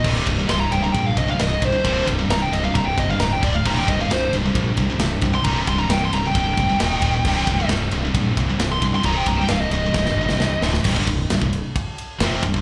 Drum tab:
CC |x---------------|----------------|x---------------|----------------|
RD |--x-x-x-x-x-x-x-|x-x-x-x-x-x-x-x-|--x-x-x-x-x-x-x-|x-x-x-x-x-x-x-x-|
SD |----o-------o---|----o-------o---|----o-------o---|----o-------o---|
BD |o-o-----o-o---o-|o-o-----o-o---o-|o-o-----o-o---o-|o-o-----o-o---o-|

CC |x---------------|----------------|x---------------|
RD |--x-x-x-x-x-x-x-|x-x-x-x---------|--x-x-x-x-x-x-x-|
SD |----o-------o---|----o---oo-oo-oo|----o-------o---|
BD |o-o-----o-o---o-|o-o-----o-------|ooo--o--o-----oo|